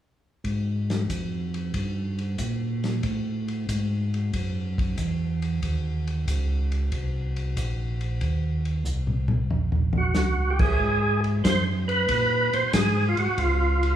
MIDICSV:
0, 0, Header, 1, 4, 480
1, 0, Start_track
1, 0, Tempo, 646552
1, 330, Time_signature, 4, 2, 24, 8
1, 10363, End_track
2, 0, Start_track
2, 0, Title_t, "Tonewheel organ"
2, 0, Program_c, 0, 16
2, 7405, Note_on_c, 0, 66, 57
2, 7800, Note_on_c, 0, 67, 58
2, 7818, Note_off_c, 0, 66, 0
2, 7868, Note_on_c, 0, 68, 97
2, 7871, Note_off_c, 0, 67, 0
2, 8318, Note_off_c, 0, 68, 0
2, 8493, Note_on_c, 0, 72, 80
2, 8642, Note_off_c, 0, 72, 0
2, 8819, Note_on_c, 0, 71, 92
2, 9311, Note_on_c, 0, 72, 82
2, 9317, Note_off_c, 0, 71, 0
2, 9447, Note_off_c, 0, 72, 0
2, 9455, Note_on_c, 0, 68, 80
2, 9696, Note_off_c, 0, 68, 0
2, 9715, Note_on_c, 0, 65, 51
2, 9786, Note_off_c, 0, 65, 0
2, 9792, Note_on_c, 0, 66, 74
2, 9941, Note_off_c, 0, 66, 0
2, 9941, Note_on_c, 0, 65, 75
2, 10363, Note_off_c, 0, 65, 0
2, 10363, End_track
3, 0, Start_track
3, 0, Title_t, "Tonewheel organ"
3, 0, Program_c, 1, 16
3, 327, Note_on_c, 1, 44, 62
3, 796, Note_off_c, 1, 44, 0
3, 811, Note_on_c, 1, 41, 64
3, 1278, Note_off_c, 1, 41, 0
3, 1292, Note_on_c, 1, 43, 56
3, 1759, Note_off_c, 1, 43, 0
3, 1770, Note_on_c, 1, 46, 68
3, 2239, Note_off_c, 1, 46, 0
3, 2252, Note_on_c, 1, 45, 73
3, 2720, Note_off_c, 1, 45, 0
3, 2737, Note_on_c, 1, 44, 67
3, 3203, Note_off_c, 1, 44, 0
3, 3217, Note_on_c, 1, 42, 63
3, 3683, Note_off_c, 1, 42, 0
3, 3695, Note_on_c, 1, 40, 73
3, 4163, Note_off_c, 1, 40, 0
3, 4179, Note_on_c, 1, 39, 73
3, 4645, Note_off_c, 1, 39, 0
3, 4658, Note_on_c, 1, 37, 80
3, 5124, Note_off_c, 1, 37, 0
3, 5137, Note_on_c, 1, 36, 56
3, 5604, Note_off_c, 1, 36, 0
3, 5618, Note_on_c, 1, 34, 72
3, 6085, Note_off_c, 1, 34, 0
3, 6096, Note_on_c, 1, 39, 79
3, 6564, Note_off_c, 1, 39, 0
3, 6567, Note_on_c, 1, 36, 76
3, 7039, Note_off_c, 1, 36, 0
3, 7048, Note_on_c, 1, 34, 64
3, 7519, Note_off_c, 1, 34, 0
3, 7533, Note_on_c, 1, 37, 71
3, 8001, Note_off_c, 1, 37, 0
3, 8017, Note_on_c, 1, 44, 73
3, 8482, Note_off_c, 1, 44, 0
3, 8494, Note_on_c, 1, 42, 80
3, 8960, Note_off_c, 1, 42, 0
3, 8975, Note_on_c, 1, 46, 71
3, 9283, Note_off_c, 1, 46, 0
3, 9308, Note_on_c, 1, 46, 36
3, 9382, Note_off_c, 1, 46, 0
3, 9453, Note_on_c, 1, 44, 84
3, 9761, Note_off_c, 1, 44, 0
3, 9785, Note_on_c, 1, 44, 42
3, 9859, Note_off_c, 1, 44, 0
3, 9928, Note_on_c, 1, 37, 86
3, 10363, Note_off_c, 1, 37, 0
3, 10363, End_track
4, 0, Start_track
4, 0, Title_t, "Drums"
4, 331, Note_on_c, 9, 36, 16
4, 331, Note_on_c, 9, 51, 39
4, 405, Note_off_c, 9, 36, 0
4, 405, Note_off_c, 9, 51, 0
4, 667, Note_on_c, 9, 51, 26
4, 670, Note_on_c, 9, 38, 34
4, 742, Note_off_c, 9, 51, 0
4, 744, Note_off_c, 9, 38, 0
4, 813, Note_on_c, 9, 36, 18
4, 815, Note_on_c, 9, 44, 38
4, 815, Note_on_c, 9, 51, 45
4, 887, Note_off_c, 9, 36, 0
4, 889, Note_off_c, 9, 44, 0
4, 889, Note_off_c, 9, 51, 0
4, 1144, Note_on_c, 9, 51, 33
4, 1218, Note_off_c, 9, 51, 0
4, 1291, Note_on_c, 9, 51, 46
4, 1292, Note_on_c, 9, 36, 18
4, 1365, Note_off_c, 9, 51, 0
4, 1367, Note_off_c, 9, 36, 0
4, 1623, Note_on_c, 9, 51, 34
4, 1697, Note_off_c, 9, 51, 0
4, 1770, Note_on_c, 9, 44, 44
4, 1770, Note_on_c, 9, 51, 43
4, 1773, Note_on_c, 9, 36, 15
4, 1844, Note_off_c, 9, 44, 0
4, 1844, Note_off_c, 9, 51, 0
4, 1847, Note_off_c, 9, 36, 0
4, 2106, Note_on_c, 9, 51, 31
4, 2108, Note_on_c, 9, 38, 31
4, 2180, Note_off_c, 9, 51, 0
4, 2182, Note_off_c, 9, 38, 0
4, 2250, Note_on_c, 9, 51, 44
4, 2254, Note_on_c, 9, 36, 17
4, 2324, Note_off_c, 9, 51, 0
4, 2328, Note_off_c, 9, 36, 0
4, 2586, Note_on_c, 9, 51, 27
4, 2660, Note_off_c, 9, 51, 0
4, 2737, Note_on_c, 9, 36, 15
4, 2738, Note_on_c, 9, 44, 40
4, 2738, Note_on_c, 9, 51, 45
4, 2811, Note_off_c, 9, 36, 0
4, 2812, Note_off_c, 9, 44, 0
4, 2812, Note_off_c, 9, 51, 0
4, 3073, Note_on_c, 9, 51, 29
4, 3147, Note_off_c, 9, 51, 0
4, 3218, Note_on_c, 9, 51, 54
4, 3219, Note_on_c, 9, 36, 19
4, 3292, Note_off_c, 9, 51, 0
4, 3293, Note_off_c, 9, 36, 0
4, 3550, Note_on_c, 9, 36, 36
4, 3556, Note_on_c, 9, 51, 34
4, 3625, Note_off_c, 9, 36, 0
4, 3630, Note_off_c, 9, 51, 0
4, 3694, Note_on_c, 9, 44, 46
4, 3694, Note_on_c, 9, 51, 45
4, 3698, Note_on_c, 9, 36, 21
4, 3768, Note_off_c, 9, 44, 0
4, 3768, Note_off_c, 9, 51, 0
4, 3772, Note_off_c, 9, 36, 0
4, 4026, Note_on_c, 9, 51, 34
4, 4100, Note_off_c, 9, 51, 0
4, 4176, Note_on_c, 9, 51, 42
4, 4178, Note_on_c, 9, 36, 18
4, 4250, Note_off_c, 9, 51, 0
4, 4252, Note_off_c, 9, 36, 0
4, 4510, Note_on_c, 9, 51, 30
4, 4584, Note_off_c, 9, 51, 0
4, 4659, Note_on_c, 9, 36, 18
4, 4660, Note_on_c, 9, 44, 40
4, 4660, Note_on_c, 9, 51, 52
4, 4734, Note_off_c, 9, 36, 0
4, 4735, Note_off_c, 9, 44, 0
4, 4735, Note_off_c, 9, 51, 0
4, 4987, Note_on_c, 9, 51, 33
4, 5061, Note_off_c, 9, 51, 0
4, 5136, Note_on_c, 9, 51, 44
4, 5138, Note_on_c, 9, 36, 18
4, 5211, Note_off_c, 9, 51, 0
4, 5212, Note_off_c, 9, 36, 0
4, 5467, Note_on_c, 9, 51, 33
4, 5541, Note_off_c, 9, 51, 0
4, 5618, Note_on_c, 9, 36, 16
4, 5619, Note_on_c, 9, 44, 48
4, 5619, Note_on_c, 9, 51, 45
4, 5693, Note_off_c, 9, 36, 0
4, 5693, Note_off_c, 9, 44, 0
4, 5693, Note_off_c, 9, 51, 0
4, 5944, Note_on_c, 9, 51, 32
4, 6019, Note_off_c, 9, 51, 0
4, 6095, Note_on_c, 9, 51, 39
4, 6097, Note_on_c, 9, 36, 18
4, 6169, Note_off_c, 9, 51, 0
4, 6171, Note_off_c, 9, 36, 0
4, 6424, Note_on_c, 9, 51, 31
4, 6498, Note_off_c, 9, 51, 0
4, 6572, Note_on_c, 9, 44, 52
4, 6646, Note_off_c, 9, 44, 0
4, 6734, Note_on_c, 9, 47, 36
4, 6809, Note_off_c, 9, 47, 0
4, 6890, Note_on_c, 9, 47, 52
4, 6964, Note_off_c, 9, 47, 0
4, 7057, Note_on_c, 9, 43, 48
4, 7131, Note_off_c, 9, 43, 0
4, 7216, Note_on_c, 9, 43, 48
4, 7291, Note_off_c, 9, 43, 0
4, 7371, Note_on_c, 9, 43, 58
4, 7445, Note_off_c, 9, 43, 0
4, 7530, Note_on_c, 9, 44, 48
4, 7533, Note_on_c, 9, 38, 50
4, 7605, Note_off_c, 9, 44, 0
4, 7607, Note_off_c, 9, 38, 0
4, 7863, Note_on_c, 9, 49, 50
4, 7866, Note_on_c, 9, 36, 54
4, 7937, Note_off_c, 9, 49, 0
4, 7940, Note_off_c, 9, 36, 0
4, 8015, Note_on_c, 9, 36, 18
4, 8089, Note_off_c, 9, 36, 0
4, 8345, Note_on_c, 9, 51, 32
4, 8419, Note_off_c, 9, 51, 0
4, 8496, Note_on_c, 9, 36, 18
4, 8498, Note_on_c, 9, 44, 55
4, 8498, Note_on_c, 9, 51, 53
4, 8500, Note_on_c, 9, 38, 58
4, 8570, Note_off_c, 9, 36, 0
4, 8572, Note_off_c, 9, 44, 0
4, 8572, Note_off_c, 9, 51, 0
4, 8574, Note_off_c, 9, 38, 0
4, 8825, Note_on_c, 9, 51, 38
4, 8900, Note_off_c, 9, 51, 0
4, 8972, Note_on_c, 9, 51, 60
4, 8975, Note_on_c, 9, 36, 21
4, 9047, Note_off_c, 9, 51, 0
4, 9049, Note_off_c, 9, 36, 0
4, 9305, Note_on_c, 9, 51, 42
4, 9379, Note_off_c, 9, 51, 0
4, 9453, Note_on_c, 9, 36, 17
4, 9453, Note_on_c, 9, 44, 49
4, 9453, Note_on_c, 9, 51, 66
4, 9455, Note_on_c, 9, 38, 54
4, 9527, Note_off_c, 9, 36, 0
4, 9527, Note_off_c, 9, 44, 0
4, 9527, Note_off_c, 9, 51, 0
4, 9530, Note_off_c, 9, 38, 0
4, 9778, Note_on_c, 9, 51, 38
4, 9853, Note_off_c, 9, 51, 0
4, 9931, Note_on_c, 9, 36, 17
4, 9932, Note_on_c, 9, 51, 49
4, 10006, Note_off_c, 9, 36, 0
4, 10006, Note_off_c, 9, 51, 0
4, 10266, Note_on_c, 9, 51, 38
4, 10340, Note_off_c, 9, 51, 0
4, 10363, End_track
0, 0, End_of_file